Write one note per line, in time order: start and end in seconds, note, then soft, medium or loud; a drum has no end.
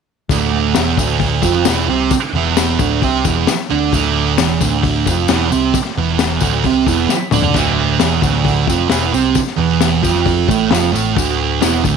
0.29 0.72 D1 loud
0.29 0.76 D2 loud
0.29 0.76 D3 loud
0.29 kick loud
0.29 open hi-hat medium
0.29 tambourine medium
0.74 0.97 E1 medium
0.74 0.98 E2 medium
0.74 0.99 E3 medium
0.74 snare loud
0.74 open hi-hat medium
0.74 tambourine loud
0.97 1.40 D1 medium
0.97 1.42 D2 loud
0.97 1.44 D3 loud
0.97 kick medium
0.97 tambourine medium
1.20 kick medium
1.20 open hi-hat medium
1.20 tambourine soft
1.43 1.65 F1 loud
1.43 1.66 F2 medium
1.43 1.66 F3 loud
1.43 kick medium
1.43 tambourine medium
1.65 1.88 E1 loud
1.65 1.88 E2 medium
1.65 1.89 E3 loud
1.65 snare loud
1.65 open hi-hat medium
1.65 tambourine loud
1.88 2.10 C2 medium
1.88 2.11 C3 medium
1.88 2.12 C4 medium
2.11 kick loud
2.11 open hi-hat medium
2.11 tambourine medium
2.33 2.76 E1 loud
2.33 2.79 E2 medium
2.33 2.80 E3 loud
2.57 snare loud
2.57 open hi-hat medium
2.57 tambourine loud
2.79 3.01 D1 loud
2.79 3.02 D2 medium
2.79 3.03 D3 loud
2.79 kick medium
2.79 tambourine medium
3.02 3.24 C2 loud
3.02 3.25 C3 medium
3.02 3.25 C4 loud
3.02 kick medium
3.02 open hi-hat medium
3.02 tambourine soft
3.25 3.47 E1 loud
3.25 3.48 E2 medium
3.25 3.48 E3 loud
3.25 kick loud
3.25 tambourine medium
3.47 muted distorted electric guitar stroke medium
3.47 muted picked electric bass stroke soft
3.47 snare loud
3.47 open hi-hat medium
3.47 tambourine loud
3.70 3.92 D2 medium
3.70 3.93 D3 loud
3.70 3.93 D4 loud
3.92 4.36 D1 loud
3.92 4.38 D2 medium
3.92 4.39 D3 loud
3.92 kick medium
3.92 open hi-hat soft
3.92 tambourine medium
4.38 4.60 E1 medium
4.38 4.61 E2 loud
4.38 4.61 E3 loud
4.38 snare loud
4.38 open hi-hat medium
4.38 tambourine loud
4.60 5.03 D1 medium
4.60 5.06 D2 loud
4.60 5.07 D3 loud
4.60 kick medium
4.60 tambourine medium
4.83 kick medium
4.83 open hi-hat medium
4.83 tambourine soft
5.06 5.27 F1 medium
5.06 5.29 F2 medium
5.06 5.30 F3 loud
5.06 kick medium
5.06 tambourine medium
5.28 5.50 E1 loud
5.28 5.51 E2 loud
5.28 5.52 E3 loud
5.28 snare loud
5.28 open hi-hat medium
5.28 tambourine loud
5.51 5.73 C2 medium
5.51 5.74 C3 medium
5.51 5.74 C4 loud
5.51 tambourine medium
5.74 kick loud
5.74 open hi-hat medium
5.74 tambourine medium
5.85 snare soft
5.97 6.40 E1 medium
5.97 6.41 E2 medium
5.97 6.42 E3 medium
6.19 snare loud
6.19 open hi-hat medium
6.19 tambourine medium
6.40 6.63 D1 medium
6.40 6.64 D2 loud
6.40 6.65 D3 loud
6.40 kick medium
6.40 tambourine medium
6.64 6.86 C2 loud
6.64 6.87 C3 medium
6.64 6.88 C4 loud
6.64 kick medium
6.64 open hi-hat medium
6.64 tambourine soft
6.87 7.08 E1 medium
6.87 7.10 E2 medium
6.87 7.10 E3 loud
6.87 kick medium
6.87 tambourine medium
7.09 muted picked electric bass stroke soft
7.09 muted distorted electric guitar stroke medium
7.09 snare medium
7.09 tambourine medium
7.31 7.54 D2 medium
7.31 7.55 D3 medium
7.31 7.55 D4 loud
7.31 mid tom loud
7.31 tambourine medium
7.42 floor tom loud
7.54 7.97 D1 medium
7.54 8.00 D2 medium
7.54 8.01 D3 loud
7.54 kick loud
7.54 tambourine medium
7.54 splash medium
7.54 crash medium
7.99 8.22 E1 medium
7.99 8.22 E2 medium
7.99 8.23 E3 medium
7.99 snare loud
7.99 open hi-hat medium
7.99 tambourine medium
8.22 8.65 D1 medium
8.22 8.67 D2 loud
8.22 8.68 D3 loud
8.22 kick medium
8.22 tambourine medium
8.33 snare soft
8.44 kick medium
8.44 open hi-hat medium
8.44 tambourine soft
8.67 8.89 F1 loud
8.67 8.89 F2 medium
8.67 8.90 F3 medium
8.67 kick loud
8.67 tambourine medium
8.89 9.11 E1 loud
8.89 9.12 E2 medium
8.89 9.13 E3 loud
8.89 snare loud
8.89 open hi-hat medium
8.89 tambourine loud
9.13 9.35 C2 medium
9.13 9.36 C3 medium
9.13 9.36 C4 loud
9.13 tambourine medium
9.35 kick loud
9.35 open hi-hat medium
9.35 tambourine medium
9.47 snare soft
9.57 10.01 E1 loud
9.57 10.02 E2 medium
9.57 10.03 E3 loud
9.80 snare loud
9.80 open hi-hat medium
9.80 tambourine loud
10.03 10.46 F1 medium
10.03 10.48 F2 loud
10.03 10.48 F3 loud
10.03 kick loud
10.03 tambourine medium
10.15 snare soft
10.26 kick medium
10.26 open hi-hat medium
10.26 tambourine soft
10.49 10.70 A1 loud
10.49 10.70 A2 loud
10.49 10.71 A3 loud
10.49 kick loud
10.49 tambourine medium
10.71 10.92 F1 loud
10.71 10.92 F2 medium
10.71 10.93 F3 loud
10.71 snare loud
10.71 open hi-hat medium
10.71 tambourine medium
10.92 11.15 A1 medium
10.92 11.15 A2 medium
10.92 11.16 A3 medium
10.92 tambourine medium
11.17 11.59 D1 loud
11.17 11.61 D2 medium
11.17 11.62 D3 loud
11.17 kick loud
11.17 open hi-hat soft
11.17 tambourine medium
11.61 11.84 E1 medium
11.61 11.83 E2 medium
11.61 11.84 E3 loud
11.61 snare loud
11.61 open hi-hat medium
11.61 tambourine loud
11.84 11.97 D1 medium
11.84 11.97 D2 medium
11.84 11.97 D3 loud
11.84 kick medium
11.84 tambourine medium